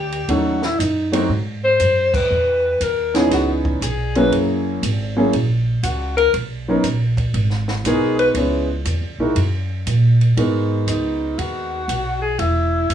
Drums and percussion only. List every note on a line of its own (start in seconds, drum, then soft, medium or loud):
0.12 ride soft
0.28 kick soft
0.28 ride medium
0.62 snare medium
0.79 kick soft
0.79 hi-hat pedal medium
0.79 ride medium
1.13 ride medium
1.29 kick soft
1.80 kick soft
1.80 hi-hat pedal medium
1.80 ride medium
2.14 kick medium
2.14 crash medium
2.81 kick soft
2.81 hi-hat pedal medium
2.81 ride medium
3.14 snare soft
3.14 ride soft
3.31 kick soft
3.31 snare soft
3.31 ride medium
3.65 kick medium
3.81 kick soft
3.81 hi-hat pedal medium
3.81 ride medium
4.15 ride soft
4.32 kick soft
4.32 ride medium
4.83 kick soft
4.83 hi-hat pedal medium
4.83 ride medium
5.33 kick soft
5.33 ride medium
5.83 kick soft
5.83 hi-hat pedal medium
5.83 ride medium
6.18 ride soft
6.33 kick soft
6.33 ride medium
6.84 kick soft
6.84 hi-hat pedal medium
6.84 ride medium
7.17 kick medium
7.17 ride soft
7.34 kick soft
7.34 ride medium
7.50 snare soft
7.68 snare soft
7.84 kick soft
7.84 hi-hat pedal medium
7.84 ride medium
8.19 ride soft
8.34 kick soft
8.34 ride medium
8.85 kick soft
8.85 hi-hat pedal medium
8.85 ride medium
9.36 kick soft
9.36 ride medium
9.86 kick soft
9.86 hi-hat pedal soft
9.86 ride medium
10.21 ride soft
10.37 kick soft
10.37 ride medium
10.87 kick soft
10.87 hi-hat pedal medium
10.87 ride medium
11.38 kick soft
11.38 ride medium
11.88 kick soft
11.88 hi-hat pedal medium
11.88 ride medium
12.39 kick soft
12.39 ride medium
12.89 kick soft
12.89 hi-hat pedal soft
12.89 ride medium